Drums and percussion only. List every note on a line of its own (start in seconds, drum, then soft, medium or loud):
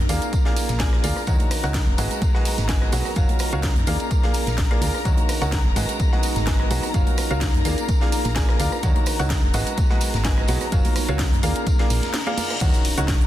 0.09 open hi-hat loud
0.09 tambourine medium
0.22 closed hi-hat medium
0.22 tambourine medium
0.33 kick loud
0.33 closed hi-hat medium
0.33 tambourine medium
0.33 tambourine soft
0.33 high conga medium
0.45 snare soft
0.56 open hi-hat loud
0.56 tambourine medium
0.56 tambourine loud
0.69 snare medium
0.69 closed hi-hat medium
0.69 tambourine medium
0.69 high conga medium
0.79 kick loud
0.79 snare loud
0.79 closed hi-hat medium
0.79 tambourine soft
0.79 tambourine medium
0.93 cross-stick medium
0.93 snare soft
1.04 open hi-hat loud
1.04 tambourine medium
1.04 high conga medium
1.16 cross-stick medium
1.16 tambourine soft
1.27 kick loud
1.27 closed hi-hat medium
1.27 tambourine medium
1.27 tambourine soft
1.40 closed hi-hat soft
1.40 high conga medium
1.51 cross-stick medium
1.51 open hi-hat loud
1.51 tambourine medium
1.63 snare soft
1.63 closed hi-hat soft
1.63 tambourine medium
1.74 kick loud
1.74 snare loud
1.74 closed hi-hat medium
1.74 tambourine soft
1.74 tambourine medium
1.87 high conga medium
1.98 open hi-hat loud
1.98 tambourine medium
2.11 closed hi-hat soft
2.11 tambourine medium
2.22 kick loud
2.22 closed hi-hat medium
2.22 tambourine soft
2.22 tambourine medium
2.22 high conga loud
2.35 snare soft
2.45 open hi-hat loud
2.45 tambourine medium
2.45 tambourine loud
2.58 snare medium
2.58 closed hi-hat medium
2.58 tambourine medium
2.58 high conga medium
2.69 kick loud
2.69 snare loud
2.69 closed hi-hat medium
2.69 tambourine medium
2.69 tambourine soft
2.82 cross-stick medium
2.92 open hi-hat loud
2.92 tambourine loud
2.92 tambourine medium
2.92 high conga medium
3.05 cross-stick medium
3.05 closed hi-hat soft
3.05 tambourine medium
3.16 kick loud
3.16 closed hi-hat medium
3.16 tambourine soft
3.16 tambourine medium
3.29 closed hi-hat soft
3.29 high conga medium
3.39 cross-stick medium
3.39 open hi-hat loud
3.39 tambourine medium
3.52 closed hi-hat soft
3.52 tambourine soft
3.63 kick loud
3.63 snare loud
3.63 closed hi-hat medium
3.63 tambourine medium
3.63 tambourine soft
3.76 closed hi-hat soft
3.76 high conga medium
3.87 open hi-hat loud
3.87 tambourine medium
4.00 closed hi-hat soft
4.00 tambourine medium
4.11 kick loud
4.11 closed hi-hat medium
4.11 tambourine soft
4.11 tambourine medium
4.11 high conga medium
4.23 snare soft
4.23 closed hi-hat soft
4.34 open hi-hat loud
4.34 tambourine medium
4.47 snare medium
4.47 closed hi-hat soft
4.47 tambourine medium
4.47 high conga medium
4.57 kick loud
4.57 snare loud
4.57 closed hi-hat medium
4.57 tambourine soft
4.57 tambourine medium
4.71 cross-stick medium
4.71 snare soft
4.71 closed hi-hat soft
4.82 open hi-hat loud
4.82 tambourine medium
4.82 high conga loud
4.94 cross-stick medium
4.94 tambourine medium
5.05 kick loud
5.05 closed hi-hat medium
5.05 tambourine soft
5.05 tambourine medium
5.18 closed hi-hat soft
5.18 high conga medium
5.29 cross-stick medium
5.29 open hi-hat loud
5.29 tambourine medium
5.41 snare soft
5.41 closed hi-hat soft
5.41 tambourine medium
5.52 kick loud
5.52 snare loud
5.52 closed hi-hat medium
5.52 tambourine soft
5.52 tambourine medium
5.65 high conga medium
5.76 open hi-hat loud
5.76 tambourine medium
5.89 closed hi-hat soft
5.89 tambourine medium
5.99 kick loud
5.99 closed hi-hat medium
5.99 tambourine soft
5.99 tambourine medium
5.99 high conga medium
6.12 snare soft
6.23 open hi-hat loud
6.23 tambourine medium
6.36 snare medium
6.36 closed hi-hat soft
6.36 tambourine medium
6.36 high conga medium
6.47 kick loud
6.47 snare loud
6.47 closed hi-hat medium
6.47 tambourine soft
6.47 tambourine medium
6.60 cross-stick medium
6.71 open hi-hat loud
6.71 tambourine loud
6.71 tambourine medium
6.71 high conga medium
6.83 cross-stick medium
6.83 closed hi-hat soft
6.83 tambourine medium
6.94 kick loud
6.94 closed hi-hat medium
6.94 tambourine soft
6.94 tambourine medium
7.07 closed hi-hat soft
7.07 high conga medium
7.17 cross-stick medium
7.17 open hi-hat loud
7.17 tambourine medium
7.31 closed hi-hat soft
7.31 tambourine soft
7.41 kick loud
7.41 snare loud
7.41 closed hi-hat medium
7.41 tambourine soft
7.41 tambourine medium
7.54 closed hi-hat soft
7.54 high conga medium
7.65 open hi-hat loud
7.65 tambourine medium
7.78 closed hi-hat soft
7.78 tambourine medium
7.88 kick loud
7.88 closed hi-hat medium
7.88 tambourine medium
7.88 tambourine soft
7.88 high conga medium
8.01 snare soft
8.01 snare medium
8.12 open hi-hat loud
8.12 tambourine medium
8.24 snare soft
8.24 closed hi-hat medium
8.24 tambourine medium
8.24 high conga medium
8.36 kick loud
8.36 snare loud
8.36 closed hi-hat medium
8.36 tambourine medium
8.36 tambourine soft
8.49 cross-stick medium
8.49 snare soft
8.60 open hi-hat loud
8.60 tambourine medium
8.60 high conga medium
8.72 cross-stick medium
8.72 tambourine medium
8.83 kick loud
8.83 closed hi-hat medium
8.83 tambourine medium
8.83 tambourine soft
8.96 closed hi-hat soft
8.96 high conga medium
9.06 cross-stick medium
9.06 open hi-hat loud
9.06 tambourine medium
9.19 snare soft
9.19 closed hi-hat soft
9.19 tambourine soft
9.30 kick loud
9.30 snare loud
9.30 closed hi-hat medium
9.30 tambourine medium
9.30 tambourine soft
9.44 high conga medium
9.53 open hi-hat loud
9.53 tambourine medium
9.67 closed hi-hat medium
9.67 closed hi-hat soft
9.67 tambourine soft
9.77 kick loud
9.77 closed hi-hat medium
9.77 tambourine soft
9.77 tambourine medium
9.77 high conga medium
9.90 snare medium
10.01 open hi-hat loud
10.01 tambourine medium
10.14 snare medium
10.14 closed hi-hat medium
10.14 tambourine soft
10.14 high conga medium
10.25 kick loud
10.25 snare loud
10.25 closed hi-hat medium
10.25 tambourine soft
10.25 tambourine medium
10.38 cross-stick medium
10.47 open hi-hat loud
10.47 tambourine medium
10.47 high conga medium
10.61 cross-stick medium
10.61 closed hi-hat soft
10.61 tambourine soft
10.72 kick loud
10.72 closed hi-hat medium
10.72 tambourine medium
10.72 tambourine soft
10.85 closed hi-hat soft
10.85 open hi-hat medium
10.85 high conga loud
10.96 cross-stick medium
10.96 open hi-hat loud
10.96 tambourine medium
11.08 closed hi-hat soft
11.08 tambourine soft
11.19 kick loud
11.19 snare loud
11.19 closed hi-hat medium
11.19 tambourine soft
11.19 tambourine medium
11.32 closed hi-hat soft
11.32 high conga medium
11.43 open hi-hat loud
11.43 tambourine medium
11.55 closed hi-hat medium
11.55 tambourine soft
11.66 kick loud
11.66 closed hi-hat medium
11.66 tambourine soft
11.66 tambourine medium
11.66 high conga medium
11.79 snare soft
11.79 closed hi-hat soft
11.90 open hi-hat loud
11.90 tambourine medium
12.03 snare medium
12.03 closed hi-hat medium
12.03 tambourine soft
12.03 high conga medium
12.14 snare loud
12.14 closed hi-hat medium
12.14 tambourine medium
12.14 tambourine soft
12.27 cross-stick medium
12.27 closed hi-hat soft
12.37 open hi-hat loud
12.37 tambourine medium
12.37 high conga medium
12.50 cross-stick medium
12.50 closed hi-hat soft
12.50 tambourine soft
12.61 kick loud
12.61 closed hi-hat loud
12.61 crash loud
12.61 tambourine medium
12.61 shaker medium
12.74 closed hi-hat soft
12.74 shaker soft
12.85 open hi-hat loud
12.85 tambourine medium
12.97 snare soft
12.97 closed hi-hat soft
12.97 shaker medium
13.08 kick loud
13.08 snare loud
13.08 closed hi-hat loud
13.08 tambourine medium
13.08 shaker medium
13.21 closed hi-hat soft
13.21 shaker soft